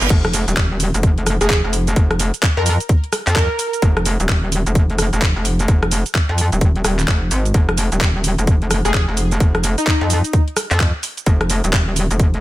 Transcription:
Already playing: reverse cymbal
0.01 G1, closed hi-hat, cabasa
0.10 F1, kick, closed hi-hat, crash, impact, cabasa
0.25 cross-stick, closed hi-hat
0.34 open hi-hat, cabasa
0.48 D#1, closed hi-hat, cabasa
0.57 kick, clap, closed hi-hat, cabasa
0.80 open hi-hat, cabasa
0.94 F1, closed hi-hat, cabasa
1.03 kick, closed hi-hat, cabasa
1.18 closed hi-hat
1.26 cross-stick, open hi-hat, cabasa
1.41 F1 G#4, closed hi-hat, cabasa
1.50 G#4, kick, clap, closed hi-hat, cabasa
1.64 F1
1.73 open hi-hat, cabasa
1.87 closed hi-hat, cabasa
1.96 F1, kick, closed hi-hat, cabasa
2.11 cross-stick, closed hi-hat
2.19 open hi-hat, cabasa
2.34 closed hi-hat, cabasa
2.43 kick, clap, closed hi-hat, cabasa
2.57 F2 A#4
2.66 A#4, open hi-hat, cabasa
2.80 closed hi-hat, cabasa
2.89 kick, closed hi-hat, cabasa
3.04 closed hi-hat
3.13 cross-stick, open hi-hat, cabasa
3.27 F2, clap, closed hi-hat, cabasa
3.36 A#4, kick, clap, open hi-hat, cabasa
3.59 open hi-hat, cabasa
3.73 closed hi-hat, cabasa
3.82 F1, kick, closed hi-hat, cabasa
3.97 cross-stick, closed hi-hat
4.06 open hi-hat, cabasa
4.20 D#1, closed hi-hat, cabasa
4.29 kick, clap, closed hi-hat, cabasa
4.52 open hi-hat, cabasa
4.66 F1, closed hi-hat, cabasa
4.75 kick, closed hi-hat, cabasa
4.90 closed hi-hat
4.99 cross-stick, open hi-hat, cabasa
5.13 F1, closed hi-hat, cabasa
5.22 kick, clap, closed hi-hat, cabasa
5.36 F1
5.45 open hi-hat, cabasa
5.59 closed hi-hat, cabasa
5.68 F1, kick, closed hi-hat, cabasa
5.83 cross-stick, closed hi-hat
5.91 open hi-hat, cabasa
6.06 closed hi-hat, cabasa
6.15 kick, clap, closed hi-hat, cabasa
6.29 F2
6.38 open hi-hat, cabasa
6.52 D#1, closed hi-hat, cabasa
6.61 kick, closed hi-hat, cabasa
6.76 closed hi-hat
6.84 D#1, cross-stick, open hi-hat, cabasa
6.99 clap, closed hi-hat, cabasa
7.08 F1, kick, clap, open hi-hat, cabasa
7.31 G#1, open hi-hat, cabasa
7.45 closed hi-hat, cabasa
7.54 F1, kick, closed hi-hat, cabasa
7.69 cross-stick, closed hi-hat
7.78 open hi-hat, cabasa
7.92 D#1, closed hi-hat, cabasa
8.01 kick, clap, closed hi-hat, cabasa
8.24 open hi-hat, cabasa
8.38 F1, closed hi-hat, cabasa
8.47 kick, closed hi-hat, cabasa
8.62 closed hi-hat
8.71 cross-stick, open hi-hat, cabasa
8.85 F1 G#4, closed hi-hat, cabasa
8.94 G#4, kick, clap, closed hi-hat, cabasa
9.08 F1
9.17 open hi-hat, cabasa
9.31 closed hi-hat, cabasa
9.40 F1, kick, closed hi-hat, cabasa
9.55 cross-stick, closed hi-hat
9.64 open hi-hat, cabasa
9.78 D#4, closed hi-hat, cabasa
9.87 kick, clap, closed hi-hat
10.01 F2
10.10 open hi-hat, cabasa
10.24 closed hi-hat, cabasa
10.33 kick, closed hi-hat, cabasa
10.48 closed hi-hat
10.57 cross-stick, open hi-hat, cabasa
10.71 F2, clap, closed hi-hat, cabasa
10.80 kick, clap, open hi-hat, cabasa
11.03 open hi-hat, cabasa
11.17 closed hi-hat, cabasa
11.26 F1, kick, closed hi-hat, cabasa
11.41 cross-stick, closed hi-hat
11.50 open hi-hat, cabasa
11.64 D#1, closed hi-hat, cabasa
11.73 kick, clap, closed hi-hat, cabasa
11.96 open hi-hat, cabasa
12.11 F1, closed hi-hat, cabasa
12.20 kick, closed hi-hat, cabasa
12.34 closed hi-hat

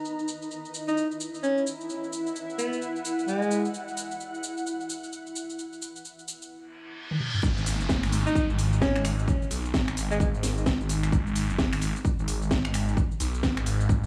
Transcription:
Already playing: B4 A#5
0.05 E4, shaker
0.19 shaker
0.28 shaker
0.42 shaker
0.51 shaker
0.65 shaker
0.74 shaker
0.88 D#4, shaker
0.97 shaker
1.11 shaker
1.19 F#5, shaker
1.34 shaker
1.43 C#4, shaker
1.58 shaker
1.67 shaker
1.81 shaker
1.90 shaker
2.04 shaker
2.13 shaker
2.27 shaker
2.36 shaker
2.50 shaker
2.58 B3, shaker
2.73 shaker
2.82 shaker
2.96 shaker
3.05 shaker
3.19 shaker
3.28 G#3, shaker
3.42 shaker
3.51 shaker
3.65 shaker
3.74 shaker
3.88 shaker
3.97 shaker
4.11 shaker
4.20 shaker
4.34 shaker
4.43 shaker
4.57 shaker
4.66 shaker
4.80 shaker
4.90 shaker
5.04 shaker
5.13 shaker
5.27 shaker
5.36 shaker
5.50 shaker
5.59 shaker
5.73 shaker
5.82 shaker
5.96 shaker
6.05 shaker
6.19 shaker
6.28 shaker
6.42 shaker
6.51 reverse cymbal
7.11 high tom
7.20 mid tom
7.34 mid tom
7.43 G#1, kick, downlifter, shaker
7.57 shaker
7.66 open hi-hat, shaker
7.80 F#1, shaker
7.89 kick, snare, shaker
8.03 G#1, finger snap, open hi-hat, shaker
8.12 open hi-hat, shaker
8.26 D#4, shaker
8.35 kick, shaker
8.49 G#1, shaker
8.59 open hi-hat, shaker
8.73 shaker
8.82 C#4, kick, snare, shaker
8.96 G#1, finger snap, shaker
9.05 finger snap, open hi-hat, shaker
9.19 shaker
9.28 kick, shaker
9.42 shaker
9.51 B1, open hi-hat, shaker
9.65 shaker
9.74 G#1, kick, snare, shaker
9.88 finger snap, shaker
9.97 G#1, open hi-hat, shaker
10.11 G#3, shaker
10.20 G#3, kick, shaker
10.34 G#1, shaker
10.43 snare, open hi-hat, shaker
10.57 shaker
10.66 kick, snare, shaker
10.80 G#1, shaker
10.89 open hi-hat, shaker
11.03 finger snap, shaker
11.12 G#1, kick, shaker
11.27 shaker
11.36 open hi-hat, shaker
11.49 F#1, shaker
11.59 kick, snare, shaker
11.73 G#1, finger snap, open hi-hat, shaker
11.82 open hi-hat, shaker
11.96 shaker
12.05 kick, shaker
12.19 G#1, shaker
12.28 open hi-hat, shaker
12.42 shaker
12.51 kick, snare, shaker
12.65 G#1, finger snap, shaker
12.74 finger snap, open hi-hat, shaker
12.88 shaker
12.97 kick, shaker
13.11 shaker
13.20 B1, open hi-hat, shaker
13.34 shaker
13.43 G#1, kick, snare, shaker
13.57 finger snap, shaker
13.66 G#1, open hi-hat, shaker
13.81 shaker
13.89 kick, shaker
14.03 G#1

